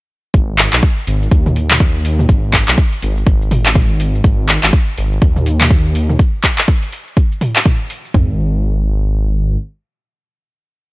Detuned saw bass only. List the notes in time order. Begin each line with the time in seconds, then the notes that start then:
0.34 G#1
0.73 B1
1.07 G#1
1.31 D#2
2.29 G#1
2.68 B1
3.02 G#1
3.27 G#1
4.24 G#1
4.63 G#1
4.97 G#1
5.22 D#2
8.14 G#1